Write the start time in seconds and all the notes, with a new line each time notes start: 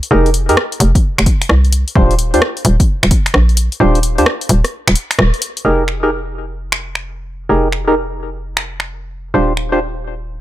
0.03 closed hi-hat
0.11 F1 D#4 G4 G#4 A#4
0.26 closed hi-hat
0.34 open hi-hat
0.49 F2 D#4 G4 G#4 A#4, closed hi-hat
0.57 cross-stick
0.72 closed hi-hat
0.80 F1, open hi-hat
0.95 kick, closed hi-hat
1.18 F1, finger snap, closed hi-hat
1.26 kick, open hi-hat
1.42 finger snap, closed hi-hat
1.49 C2, cross-stick
1.65 closed hi-hat
1.72 open hi-hat
1.88 closed hi-hat
1.96 D#1 D4 F4 G4 C5, kick
2.11 closed hi-hat
2.19 open hi-hat
2.34 D#2 D4 F4 G4 C5, closed hi-hat
2.42 cross-stick
2.57 closed hi-hat
2.65 D#1, open hi-hat
2.80 kick, closed hi-hat
3.03 D#1, finger snap, closed hi-hat
3.11 kick, open hi-hat
3.26 finger snap, closed hi-hat
3.34 A#1, cross-stick
3.49 closed hi-hat
3.57 open hi-hat
3.72 closed hi-hat
3.80 D#1 D4 F4 G4 C5
3.95 closed hi-hat
4.03 open hi-hat
4.18 D#2 D4 F4 G4 C5, closed hi-hat
4.26 cross-stick
4.41 closed hi-hat
4.49 D#1, open hi-hat
4.64 cross-stick, closed hi-hat
4.88 D#1, finger snap, closed hi-hat
4.96 open hi-hat
5.11 finger snap, closed hi-hat
5.19 D#1, cross-stick
5.34 closed hi-hat
5.42 open hi-hat
5.57 closed hi-hat
5.65 F1 D#4 G4 G#4 A#4
5.88 finger snap
6.03 D#4 G4 G#4 A#4
6.72 finger snap
6.95 finger snap
7.49 F1 D#4 G4 G#4 A#4
7.72 finger snap
7.88 D#4 G4 G#4 A#4
8.57 finger snap
8.80 finger snap
9.34 D#1 D4 F4 G4 C5
9.57 finger snap
9.72 D4 F4 G4 C5